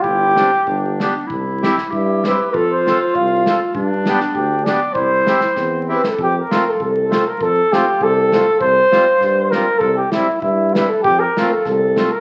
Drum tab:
SD |--o---o-|--oo--o-|--o---o-|--oo--o-|
BD |o---o---|o---o---|o---o---|o---o---|

SD |--ooo--o|--o---o-|--o---o-|--o-o-o-|
BD |o---o---|o---o---|o---o---|o---o---|

SD |--o---o-|--o-o-o-|
BD |o---o---|o---o---|